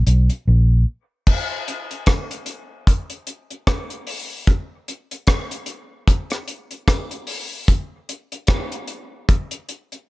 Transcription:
0.07 B1, closed hi-hat
0.30 closed hi-hat
0.47 A#1
1.27 kick, crash
1.68 closed hi-hat
1.91 closed hi-hat
2.06 kick, cross-stick, closed hi-hat
2.31 closed hi-hat
2.46 closed hi-hat
2.87 kick, closed hi-hat
3.10 closed hi-hat
3.27 closed hi-hat
3.51 closed hi-hat
3.67 kick, cross-stick, closed hi-hat
3.90 closed hi-hat
4.07 open hi-hat
4.47 kick, closed hi-hat
4.88 closed hi-hat
5.11 closed hi-hat
5.27 kick, cross-stick, closed hi-hat
5.51 closed hi-hat
5.66 closed hi-hat
6.08 kick, closed hi-hat
6.30 cross-stick, closed hi-hat
6.48 closed hi-hat
6.71 closed hi-hat
6.88 kick, cross-stick, closed hi-hat
7.11 closed hi-hat
7.27 open hi-hat
7.68 kick, closed hi-hat
8.09 closed hi-hat
8.32 closed hi-hat
8.47 kick, cross-stick, closed hi-hat
8.72 closed hi-hat
8.88 closed hi-hat
9.29 kick, closed hi-hat
9.51 closed hi-hat
9.69 closed hi-hat
9.92 closed hi-hat

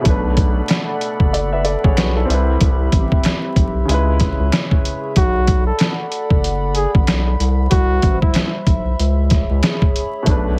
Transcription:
Already playing: B5
0.01 B2 A3 A4 D5 F#5
0.05 B1 D4, kick, closed hi-hat
0.10 B4
0.37 kick, closed hi-hat
0.68 finger snap, snare, closed hi-hat
1.01 closed hi-hat
1.20 F#1, kick
1.33 A4 D5, closed hi-hat
1.53 B4 E5
1.64 A4 D5, closed hi-hat
1.84 A1 G#4 C#5, kick
1.97 B1 F#4 B4, finger snap, snare, closed hi-hat
2.16 E4 A4
2.25 C2 G3 C4
2.30 C4 E4 G4 B4 E5, closed hi-hat
2.61 C2, kick, closed hi-hat
2.92 A1, kick, closed hi-hat
3.12 kick
3.24 finger snap, snare, closed hi-hat
3.56 B1, kick, closed hi-hat
3.85 C#2 C#3 G#3, closed hi-hat
3.90 E4 G#4 C#5 E5
3.94 B4
4.20 kick, snare, closed hi-hat
4.40 C#2
4.52 finger snap, snare, closed hi-hat
4.71 kick
4.85 closed hi-hat
5.16 B1 F#4 A4 D5 F#5 B5, kick, closed hi-hat
5.47 kick, closed hi-hat
5.67 A4
5.79 finger snap, snare, closed hi-hat
6.12 closed hi-hat
6.30 F#1, kick
6.44 closed hi-hat
6.75 G#4, closed hi-hat
6.95 A1, kick
7.07 B1, finger snap, snare, closed hi-hat
7.40 C2 G3 C5 E5, closed hi-hat
7.71 C2 F#4, kick, closed hi-hat
8.02 A1, kick, closed hi-hat
8.22 E4, kick
8.34 finger snap, snare, closed hi-hat
8.67 B1, kick, closed hi-hat
8.99 C#2 G#4 C#5 B5, closed hi-hat
9.30 kick, snare, closed hi-hat
9.50 C#2
9.63 finger snap, snare, closed hi-hat
9.82 kick
9.96 closed hi-hat
10.23 B2 A3 A4 D5 F#5, closed hi-hat
10.27 B1 D4, kick
10.31 B4

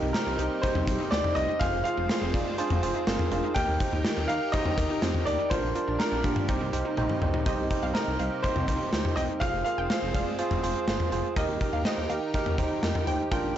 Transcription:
Already playing: C3 G3 A#3 D#4 G4 A#4
0.02 C2 D#4
0.13 D#4 G4 A#4, snare, closed hi-hat
0.27 C2 C4
0.39 C2 D#4 G4 C5, closed hi-hat
0.62 D#4 G4 C5, kick, closed hi-hat
0.75 C2 C4, mid tom
0.87 C2 D#4 G4 C5, kick, closed hi-hat
1.00 D#4
1.11 D2 C4 D#4 G4 C5 D5, snare, closed hi-hat
1.24 mid tom
1.35 C2 D4 D#4 G4 C5 D#5, closed hi-hat
1.49 D#4
1.59 F1 G#3 C4 F4 G#4 C5 F5, kick, closed hi-hat
1.73 F1
1.84 F4 G#4 C5 F5, closed hi-hat
1.97 F1 F4
2.09 F4 G#4 C5, snare, closed hi-hat
2.22 F1 C4
2.34 F1 D#4 F4 G#4 D5, kick, closed hi-hat
2.58 D4 F4 G#4 C5, closed hi-hat
2.70 F1 C4, mid tom
2.83 F1 F4 G#4 C5, closed hi-hat
2.95 D#4
3.07 G1 C4 F4 G#4 A#4, snare, closed hi-hat
3.19 mid tom
3.31 F1 D4 F4 G#4 A#4, closed hi-hat
3.44 D#4
3.54 D#2 D#3 D#4 G4 A#4 G5, kick, closed hi-hat
3.68 D#2
3.80 D#4 G4 C5, kick, closed hi-hat
3.93 D#2 D#4
4.05 D#4 G4 A#4, snare, closed hi-hat
4.17 D#2 C4
4.28 D#2 D#4 G4 A#4 F5, closed hi-hat
4.52 D#4 G4 C5 D#5, kick, closed hi-hat
4.66 D#2 D4, mid tom
4.78 D#2 D#4 G4 A#4, kick, closed hi-hat
4.90 D#4
5.02 F2 C4 D#4 G4 C5, snare, closed hi-hat
5.14 mid tom
5.25 D#2 D4 D#4 G4 A#4 D5, closed hi-hat
5.39 D#4
5.50 A#1 G3 A#3 D4 F4 A#4 C5, kick, closed hi-hat
5.63 A#1
5.75 D4 F4 A#4, closed hi-hat
5.88 A#1 D4
5.99 D4 F4 A#4, snare, closed hi-hat
6.12 A#1 C4
6.24 A#1 D4 F4 G4, kick, closed hi-hat
6.36 mid tom
6.48 C2 C3 D#4 G4 C5, kick, closed hi-hat
6.61 C2 C4
6.73 C2 D#4 G4 C5, closed hi-hat
6.85 D#4
6.97 A#1 C4 D#4 G4 C5, high tom
7.10 mid tom
7.22 C2 D4 D#4 G4 C5, mid tom
7.34 D#4, floor tom
7.46 C2 C3 G3 A#3 D#4 G4 C5 D#5, kick, closed hi-hat
7.58 C2
7.71 D#4 G4 C5, kick, closed hi-hat
7.83 C2 F5
7.94 G4 A#4 C5 D#5, snare, closed hi-hat
8.07 C2
8.19 C2 D#4 G4 C5 F5, closed hi-hat
8.43 D#4 G4 C5, kick, closed hi-hat
8.56 C2, mid tom
8.68 C2 D#4 G4 C5, kick, closed hi-hat
8.93 D2 D#4 G4 C5, snare, closed hi-hat
9.05 mid tom
9.16 C2 D#4 G4 C5 D#5 G5, closed hi-hat
9.40 F1 G#3 C4 F4 G#4 C5 F5, kick, closed hi-hat
9.54 F1
9.64 F4 G#4 A#4 F5, closed hi-hat
9.78 F1 G5
9.90 F4 G#4 C5 F5, snare, closed hi-hat
10.03 F1
10.14 F1 F4 G#4 D5 F5, kick, closed hi-hat
10.39 F4 G#4 C5, closed hi-hat
10.51 F1, mid tom
10.63 F1 F4 G#4 C5, closed hi-hat
10.88 G1 F4 G#4 C5, snare, closed hi-hat
11.00 mid tom
11.12 F1 F4 G#4 C5, closed hi-hat
11.36 D#2 D#3 D#4 G4 A#4 D#5, kick, closed hi-hat
11.49 D#2
11.61 D#4 G4 A#4, kick, closed hi-hat
11.73 D#2 F5
11.85 D#4 G4 C5 D#5, snare, closed hi-hat
11.98 D#2
12.10 D#2 D#4 G4 A#4 F5, closed hi-hat
12.34 D#4 G4 A#4, kick, closed hi-hat
12.46 D#2, mid tom
12.58 D#2 D#4 G4 C5, kick, closed hi-hat
12.83 F2 D#4 G4 A#4, snare, closed hi-hat
12.95 mid tom
13.07 D#2 D#4 G4 C5 G5, closed hi-hat
13.31 A#1 A#3 D4 F4 A#4 G5, kick, closed hi-hat
13.44 A#1

